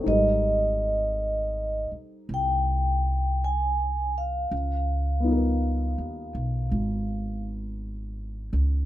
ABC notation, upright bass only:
X:1
M:4/4
L:1/8
Q:"Swing" 1/4=54
K:Ab
V:1 name="Upright bass" clef=bass
A,,,3 z C,,4 | D,,2- (3D,, E,, _C,, A,,,3 D,, |]